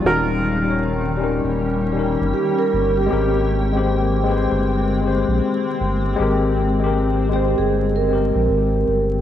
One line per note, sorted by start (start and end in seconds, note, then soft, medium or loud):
0.00 1.39 D#1 loud
0.00 9.21 D#3 medium
0.00 0.51 G3 loud
0.00 3.08 G3 medium
0.00 9.21 A#3 medium
0.00 3.08 C#4 medium
0.00 9.21 G5 medium
0.04 0.52 C#4 medium
0.04 0.53 D#4 medium
0.04 1.79 A#4 medium
0.09 0.54 A#4 loud
0.64 1.09 G3 medium
0.64 1.10 C#4 medium
0.68 1.11 D#4 medium
0.68 1.12 C#5 medium
1.17 1.84 G3 medium
1.17 1.85 C#4 medium
1.21 1.86 D#4 medium
1.21 1.87 A#4 loud
1.43 2.16 D#1 loud
1.93 2.91 G3 medium
1.93 2.92 C#4 medium
1.93 2.93 D#4 medium
1.99 2.94 A#4 medium
2.21 2.33 G1 loud
2.34 2.57 G4 medium
2.59 2.95 A#4 medium
2.73 3.08 G1 medium
2.97 3.34 G4 medium
3.06 3.57 G#3 loud
3.06 3.58 C4 loud
3.11 4.47 G#1 loud
3.11 9.21 G#3 medium
3.11 9.21 C4 medium
3.11 3.59 G4 loud
3.11 3.60 A#4 loud
3.73 4.17 G#3 medium
3.73 4.19 C4 medium
3.77 4.20 G4 medium
3.77 4.21 C5 loud
4.23 4.91 G#3 medium
4.23 4.92 C4 medium
4.28 4.93 G4 medium
4.28 4.36 B4 medium
4.37 4.97 C5 loud
4.51 5.24 G1 loud
5.01 5.99 G#3 medium
5.01 6.00 C4 medium
5.06 6.01 G4 medium
5.06 6.02 C5 loud
5.28 5.41 A#1 loud
5.80 6.15 G1 medium
6.16 7.54 G#1 loud
6.16 6.66 G#3 loud
6.16 6.67 C4 loud
6.16 6.68 G4 loud
6.22 6.69 A#4 loud
6.80 7.25 G#3 medium
6.80 7.26 C4 medium
6.84 7.27 G4 medium
6.84 7.28 A#4 medium
7.29 7.97 G#3 medium
7.29 7.99 C4 medium
7.33 7.57 G4 medium
7.33 8.01 C5 loud
7.33 8.00 G5 medium
7.58 8.31 G1 loud
7.58 7.95 G#4 medium
7.96 9.08 A#4 medium
8.08 9.06 G#3 medium
8.08 9.08 C4 medium
8.13 9.09 G4 medium
8.13 9.10 A#4 medium
8.35 8.48 A#1 medium
8.49 8.84 G#1 loud
8.88 9.21 G1 medium